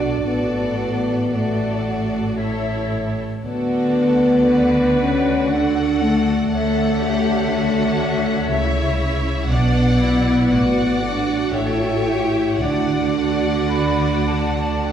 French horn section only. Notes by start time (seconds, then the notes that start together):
Already playing: D4
0.25 B3
1.32 A3
3.45 B3
5.00 C#4
5.50 D4
6.01 A3
9.49 B3
11.01 D4
11.54 E4
11.64 F#4
11.72 E4
11.80 F#4
11.89 E4
11.96 F#4
12.05 E4
12.13 F#4
12.21 E4
12.61 D4